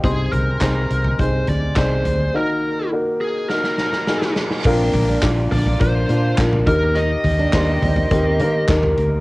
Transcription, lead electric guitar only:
X:1
M:4/4
L:1/8
Q:1/4=104
K:Eb
V:1 name="Lead electric guitar"
A B3 c d c2 | B2 z A B3 z | z3 d c2 z B | e6 z2 |]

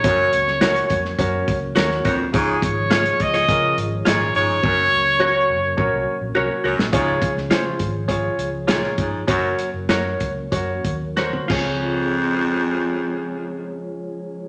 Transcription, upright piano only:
X:1
M:4/4
L:1/8
Q:1/4=104
K:Db
V:1 name="Upright piano"
[DGBd] z [DGBd] z [DGBd] z [DGBd] z | [DFAd] z [DFAd] z [DFAB] z [DFAe] z | [DGBd] z [DGBd] z [DGBd] z [DGBd] z | [FAd] z [FAc] z [FAd] z [FAd] z |
[GBd] z [GBd] z [GBd] z [GBc] [FAd]- | [FAd]8 |]
V:2 name="Upright piano" clef=bass
z8 | D,3 z4 z | z8 | D,3 z4 z |
z6 z D,,- | D,,8 |]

